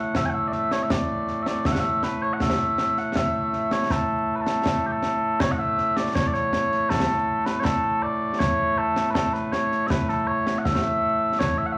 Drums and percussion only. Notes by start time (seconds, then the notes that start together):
0.15 concert bass drum, snare
0.52 snare
0.71 snare
0.90 concert bass drum, snare
1.28 snare
1.46 snare
1.65 concert bass drum, snare
2.03 snare
2.40 concert bass drum, snare
2.59 snare
2.78 snare
2.97 snare
3.16 concert bass drum, snare
3.53 snare
3.71 snare
3.90 concert bass drum, snare
4.46 snare
4.66 concert bass drum, snare
5.03 snare
5.40 concert bass drum, snare
5.78 snare
5.97 snare
6.15 concert bass drum, snare
6.34 snare
6.53 snare
6.72 snare
6.90 concert bass drum, snare
7.09 snare
7.46 snare
7.65 concert bass drum, snare
8.40 concert bass drum, snare
8.96 snare
9.15 concert bass drum, snare
9.35 snare
9.53 snare
9.72 snare
9.90 concert bass drum, snare
10.09 snare
10.47 snare
10.65 concert bass drum, snare
11.40 concert bass drum, snare